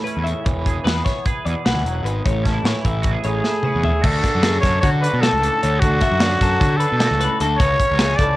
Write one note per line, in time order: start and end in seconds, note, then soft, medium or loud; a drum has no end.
0.00 0.25 A2 medium
0.00 0.44 E3 medium
0.00 1.88 E4 medium
0.00 0.66 G#4 medium
0.00 0.25 B4 medium
0.07 0.44 C#4 soft
0.07 closed hi-hat soft
0.17 0.32 E2 medium
0.24 0.44 A2 medium
0.24 0.44 E5 medium
0.24 closed hi-hat soft
0.44 0.77 E1 medium
0.44 1.65 E3 medium
0.44 0.84 C#5 medium
0.44 kick loud
0.44 closed hi-hat medium
0.66 1.25 G#4 medium
0.66 kick medium
0.66 closed hi-hat medium
0.83 1.01 E2 medium
0.83 2.22 B3 medium
0.83 1.04 B4 medium
0.83 snare medium
0.83 closed hi-hat medium
1.05 1.25 C#5 medium
1.05 kick medium
1.05 snare soft
1.05 closed hi-hat medium
1.25 2.23 G#4 medium
1.25 1.45 B4 medium
1.25 kick medium
1.25 closed hi-hat medium
1.45 1.54 E2 medium
1.45 2.26 B2 medium
1.45 1.65 D5 medium
1.45 closed hi-hat soft
1.65 1.73 B1 medium
1.65 1.84 E3 medium
1.65 2.05 F#5 medium
1.65 snare medium
1.65 closed hi-hat medium
1.74 1.82 D2 medium
1.84 2.00 E1 medium
1.84 2.05 F#3 medium
1.84 closed hi-hat soft
2.03 2.20 G#1 medium
2.03 2.26 G#3 medium
2.03 2.25 B4 medium
2.03 closed hi-hat soft
2.25 2.57 A1 medium
2.25 3.22 A2 medium
2.25 2.45 C#5 medium
2.25 kick medium
2.25 closed hi-hat medium
2.43 2.52 C#4 medium
2.43 2.65 A4 medium
2.43 kick medium
2.43 snare soft
2.43 closed hi-hat medium
2.52 3.42 E4 soft
2.62 2.72 A2 medium
2.62 4.03 E3 medium
2.62 snare medium
2.62 closed hi-hat medium
2.66 2.85 C#5 medium
2.85 3.16 A1 medium
2.85 3.25 E5 medium
2.85 kick medium
2.85 closed hi-hat medium
3.02 3.12 F#4 medium
3.02 kick medium
3.02 closed hi-hat medium
3.12 4.01 G#4 soft
3.23 3.40 A1 medium
3.23 3.79 A2 medium
3.23 4.05 G#4 medium
3.23 3.45 C#5 medium
3.23 closed hi-hat soft
3.43 4.01 E4 soft
3.43 3.65 A4 medium
3.43 snare soft
3.63 4.02 C#4 soft
3.63 3.84 B4 medium
3.63 mid tom soft
3.75 3.90 E2 medium
3.80 4.00 A2 medium
3.80 floor tom medium
3.85 4.05 E5 medium
4.00 4.20 D2 medium
4.00 5.61 D3 medium
4.00 4.84 F#4 medium
4.00 4.59 A4 medium
4.00 kick loud
4.00 crash loud
4.05 4.44 D5 medium
4.22 4.65 D4 medium
4.22 kick medium
4.22 snare soft
4.22 closed hi-hat medium
4.35 4.58 F#2 medium
4.43 5.86 C#4 medium
4.43 4.63 G#4 medium
4.43 snare medium
4.43 closed hi-hat medium
4.60 4.79 F#2 medium
4.60 4.83 A4 medium
4.60 4.80 C#5 medium
4.60 kick medium
4.60 snare soft
4.60 closed hi-hat medium
4.65 6.40 F#3 medium
4.65 5.02 D4 medium
4.81 5.06 D3 medium
4.81 5.03 F#4 medium
4.81 4.90 C#5 medium
4.81 kick medium
4.81 closed hi-hat medium
4.85 5.22 F#4 medium
5.01 5.41 D4 medium
5.01 5.22 B4 medium
5.01 5.23 D5 medium
5.01 closed hi-hat medium
5.13 5.29 B2 medium
5.20 5.61 A2 medium
5.20 5.62 F#4 medium
5.20 5.81 A4 medium
5.20 5.62 A4 medium
5.20 snare medium
5.20 closed hi-hat medium
5.33 5.48 C#2 medium
5.42 5.80 D4 medium
5.42 closed hi-hat medium
5.62 5.79 D2 medium
5.62 5.80 D3 medium
5.62 7.02 F#4 soft
5.62 5.82 C#5 medium
5.62 closed hi-hat medium
5.79 5.98 D2 medium
5.79 7.40 D3 medium
5.79 6.01 D4 medium
5.79 6.78 F#4 medium
5.79 6.02 A4 medium
5.79 kick loud
5.79 closed hi-hat medium
6.01 6.40 D4 medium
6.01 6.21 E5 medium
6.01 kick medium
6.01 snare soft
6.01 closed hi-hat medium
6.11 6.35 F#2 medium
6.20 7.80 C#4 medium
6.20 6.42 D5 medium
6.20 snare loud
6.20 closed hi-hat medium
6.40 6.56 F#2 medium
6.40 8.19 F#3 medium
6.40 6.59 D4 medium
6.40 6.81 A4 medium
6.40 kick medium
6.40 snare soft
6.40 closed hi-hat medium
6.60 6.84 D3 medium
6.60 6.80 D4 medium
6.60 kick loud
6.60 closed hi-hat medium
6.77 7.38 A4 medium
6.77 7.00 B4 medium
6.77 closed hi-hat medium
6.81 7.21 D4 medium
6.92 7.07 B2 medium
7.00 7.40 A2 medium
7.00 7.41 F#4 medium
7.00 7.20 D5 medium
7.00 snare medium
7.00 closed hi-hat medium
7.11 7.26 C#2 medium
7.20 7.58 D4 medium
7.20 7.40 B4 medium
7.20 closed hi-hat medium
7.40 7.56 D2 medium
7.40 7.58 D3 medium
7.40 7.60 F#4 medium
7.40 7.60 A4 medium
7.40 closed hi-hat medium
7.57 7.75 C#2 medium
7.57 8.20 C#3 medium
7.57 8.37 F#4 medium
7.57 8.17 C#5 medium
7.57 8.00 C#5 medium
7.57 kick loud
7.57 closed hi-hat loud
7.80 8.19 C#4 medium
7.80 kick medium
7.80 closed hi-hat medium
7.91 8.14 C#2 medium
7.99 8.37 A3 medium
7.99 8.19 G#4 medium
7.99 snare loud
7.99 closed hi-hat loud
8.16 8.34 C#2 medium
8.16 8.37 E3 medium
8.16 8.37 C#4 soft
8.16 8.37 A4 medium
8.16 8.37 D5 loud
8.16 kick medium
8.16 closed hi-hat medium